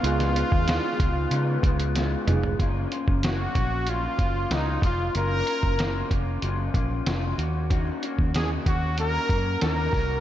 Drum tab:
HH |xxx-x-x-x-xxx-x-|x-x-x-x-x-x-x-x-|x-x-x-x-x-x-x-x-|x-x-x-x-x-x-x-o-|
SD |-o--o-------o---|----o-------o---|----o-------o---|----o-------o---|
T2 |--------------o-|----------------|----------------|----------------|
FT |---------------o|----------------|----------------|----------------|
BD |---o--o---o-----|o--o--o---o---o-|---o--o---o-----|o--o--o---o---o-|